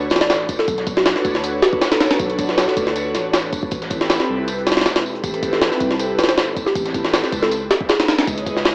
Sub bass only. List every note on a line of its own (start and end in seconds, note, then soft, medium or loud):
0.00 0.12 D2 loud
0.11 0.48 A1 loud
0.68 1.14 B1 loud
1.25 1.61 D2 loud
2.20 2.66 B1 loud
2.77 3.16 D2 loud
3.15 3.51 A1 loud
3.72 4.18 A1 loud
4.29 4.87 C2 loud
4.86 4.95 E1 loud
4.96 5.22 E1 medium
5.24 5.70 A1 loud
5.81 6.20 C2 loud
6.18 6.55 G1 loud
6.75 7.22 A1 loud
7.32 7.69 C#2 loud
8.27 8.74 C#2 loud